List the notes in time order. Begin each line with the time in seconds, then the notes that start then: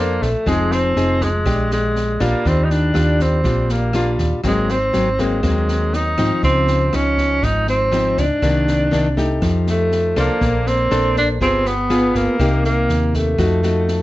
Already playing: F2 F3 A#3 D4 A4 C5
0.22 A#1 A3, kick, snare
0.46 F1 F3 G#3 C4 D#4 G#4, kick, cross-stick, snare
0.72 C4, snare
0.96 F1 C4 D#4 G#4, snare
1.21 G#3, kick, snare
1.46 A#1 A#2 G#3 D4 G4, kick, cross-stick, snare
1.71 G#3, snare
1.96 snare
2.20 A#1 G3 A#3 D4 F4, kick, cross-stick, snare
2.45 D#2 D#3 C4, kick, snare
2.64 D#4
2.70 D4, snare
2.94 D#2 G3 D4 F4, cross-stick, snare
3.20 C4, kick, snare
3.44 A#1 A#2 G3 D4 F4, kick, snare
3.69 A#3, snare
3.93 G3 D4 F4, cross-stick, snare
4.19 D#2, kick, snare
4.44 G#1 G#2 F#3 G#3 A#3 C4, kick, cross-stick, snare
4.69 C4, snare
4.93 G#1 F#3 A#3 C4, snare
5.19 F#3 G#3 A#3 C4, kick, snare
5.43 D#2 D#3 F#3 A#3 C4, kick, cross-stick, snare
5.68 snare
5.93 D#4, snare
6.18 G#2 F3 C4 D#4, kick, cross-stick, snare
6.43 C#2 C#3 C4, kick, snare
6.68 snare
6.93 C#2 F3 C#4 D#4, cross-stick, snare
7.18 kick, snare
7.42 G#1 G#2 D#4, kick, snare
7.67 C4, snare
7.91 F3 C4 D#4, cross-stick, snare
8.17 C#2 D4, kick, snare
8.42 C2 C3 D#3 A#3 D4, kick, cross-stick, snare
8.68 snare
8.91 C2 D#3 A#3 D4, snare
9.17 A3 D#4 G4, kick, snare
9.42 F2 F3, kick, cross-stick, snare
9.67 A3, snare
9.92 snare
10.16 C2 A#3 D4 A4 C5, kick, cross-stick, snare
10.41 A#1 A#3, kick, snare
10.67 C4, snare
10.91 A#1 D4 A4 C5, cross-stick, snare
11.16 D4, kick, snare
11.41 G1 G3 B3 C4 F4 G#4, kick, snare
11.66 B3, snare
11.90 B3 F4 G#4, cross-stick, snare
12.15 G1 A#3, kick, snare
12.39 C2 C3 A#3 D#4 G4, kick, cross-stick, snare
12.64 A#3, snare
12.89 D#2, snare
13.14 A3, kick, snare
13.38 F2 F3 A3 D#4 F#4, kick, cross-stick, snare
13.63 A3 D#4 F#4, snare
13.88 snare